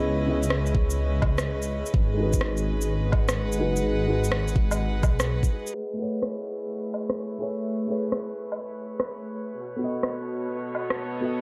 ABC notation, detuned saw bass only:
X:1
M:4/4
L:1/8
Q:"Swing 16ths" 1/4=126
K:Alyd
V:1 name="Detuned saw bass" clef=bass
C,,4 C,, C,,2 z | G,,,6- G,,, F,,, | G,,,4 G,,, B,,,2 z | z8 |
z8 | z8 |]